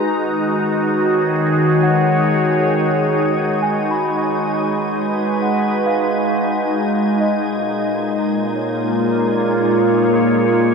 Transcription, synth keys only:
X:1
M:4/4
L:1/16
Q:1/4=67
K:G#dor
V:1 name="Synth keys"
[GB]3 z4 z f8 | g b c'6 f2 e6 | d6 c8 z2 |]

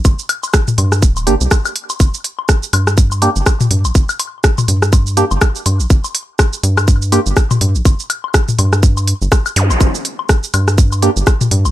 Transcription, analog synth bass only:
X:1
M:4/4
L:1/16
Q:"Swing 16ths" 1/4=123
K:Gm
V:1 name="Analog synth bass" clef=bass
G,,, z4 z G,,2 D,,,2 G,,, C,, z4 | G,,, z4 z G,,4 z G,,, z2 G,, B,,, | G,,, z4 z G,,4 z G,,, z2 G,, B,,, | G,,, z4 z G,,4 z G,,, z2 G,, B,,, |
G,,, z4 z G,,4 z G,,, z2 G,, B,,, | G,,, z4 z G,,4 z G,,, z2 G,, B,,, |]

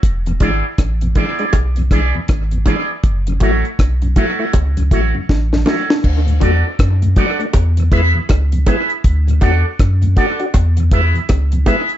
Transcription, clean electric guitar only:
X:1
M:4/4
L:1/16
Q:"Swing 16ths" 1/4=80
K:Emix
V:1 name="Clean electric guitar"
z2 [B,EGd] z3 [B,EGd] [B,EGd] z2 [B,EGd] z3 [B,EGd] z | z2 [A,EFc] z3 [A,EFc] [A,EFc] z2 [A,EFc] z3 [A,EFc] z | z2 [DFAd] z3 [DFAd] z3 [EGBe] z3 [EGBe] z | z2 [DFAd] z3 [DFAd] z3 [EGBe] z3 [EGBe] z |]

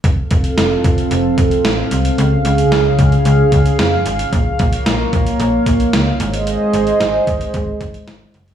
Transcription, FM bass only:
X:1
M:4/4
L:1/8
Q:1/4=112
K:Fphr
V:1 name="FM bass" clef=bass
F,,, F,,, F,,, F,,, F,,, F,,, =A,,, C,, | D,, D,, D,, D,, D,, D,, F,, A,,, | B,,, B,,, B,,, B,,, B,,, B,,, D,, A,,,- | A,,, A,,, A,,, A,,, A,,, A,,, A,,, G,,, |]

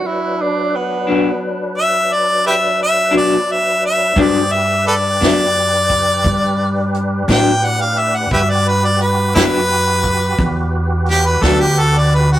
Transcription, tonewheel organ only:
X:1
M:12/8
L:1/8
Q:3/8=58
K:Glyd
V:1 name="Tonewheel organ"
[F,DB]12 | [G^G=c] [D=GB]8- [DGB]3 | [FGB]12 |]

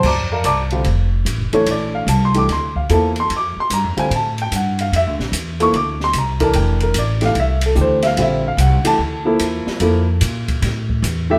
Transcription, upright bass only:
X:1
M:4/4
L:1/8
Q:"Swing" 1/4=147
K:Bblyd
V:1 name="Upright bass" clef=bass
F,,2 C,,2 F,,,2 (3A,,, F,,, D,,, | B,,,2 C,,2 D,,2 E,,2 | F,, z (3G,, F,, D,, A,,2 G,,2 | (3F,, D,, B,,, E,,2 D,,2 C,,2 |
F,,,2 A,,,2 C,,2 D,,2 | B,,,2 C,, z D,,2 E,, z | F,,2 B,,2 A,,2 E,,2 |]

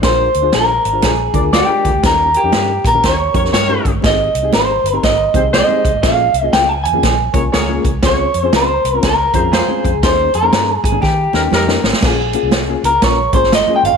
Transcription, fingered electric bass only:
X:1
M:4/4
L:1/16
Q:"Swing" 1/4=120
K:Bbdor
V:1 name="Fingered electric bass" clef=bass
B,,,2 =D,,2 B,,,2 A,,,2 B,,,2 D,,3 z D,, D,, | E,,3 F,, G,,2 B,,2 E,,2 F,,2 G,,2 G,,,2 | A,,,2 C,,2 A,,,2 G,,,2 A,,,2 C,,3 z C,, A,,, | B,,,2 C,,2 D,,2 F,,2 B,,,2 C,,2 D,,2 C,,2 |
D,,2 F,,2 D,,2 C,,2 z2 F,,3 z F,, D,, | E,,2 F,,2 G,,2 A,,2 E,2 E,,2 F,,2 A,,, z | B,,,3 C,,3 D,,2 B,,,2 A,,,3 z G,,, G,,, |]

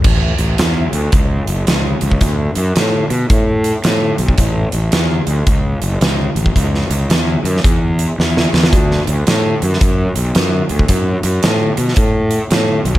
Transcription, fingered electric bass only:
X:1
M:4/4
L:1/8
Q:"Swing" 1/4=111
K:A
V:1 name="Fingered electric bass" clef=bass
A,,, A,,, E,, D,, C,, F,,, C,, C,, | D,, F,, A,, B,, A,,2 A,, B,,, | A,,, A,,, E,, D,, C,, F,,, C,, A,,, | C,, C,, E,, F,, E,,2 E,, E,, |
D,, D,, A,, F,, F,, B,,, F,, D,, | F,, F,, A,, B,, A,,2 A,, B,,, |]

